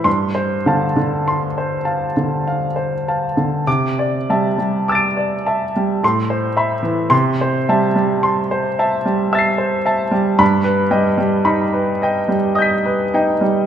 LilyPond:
<<
  \new Staff \with { instrumentName = "Grand piano" } { \time 3/4 \key c \major \tempo 4 = 53 << { c'''8 r2 r8 | d'''8 r8 <e''' a''' d''''>4 c'''8 r8 | c'''8 r4. <e''' a''' c''''>4 | b''8 r4. <dis''' g''' b'''>4 | } \\ { r16 c''16 <f'' a''>16 d16 c'''16 c''16 <f'' a''>16 d16 f''16 c''16 <f'' a''>16 d16 | r16 d''16 <e'' a''>16 g16 d'''16 d''16 <e'' a''>16 g16 r16 c''16 <e'' b''>16 e16 | r16 c''16 <e'' a''>16 g16 c'''16 c''16 <e'' a''>16 g16 e''16 c''16 <e'' a''>16 g16 | r16 b'16 <dis'' g''>16 g16 b''16 b'16 <dis'' g''>16 g16 dis''16 b'16 <dis'' g''>16 g16 | } >> }
  \new Staff \with { instrumentName = "Grand piano" } { \clef bass \time 3/4 \key c \major g,8 d4 r4. | c8 g4 r8 a,4 | c8 g4 r4. | g,8 g8 dis'4 r8 dis'8 | }
>>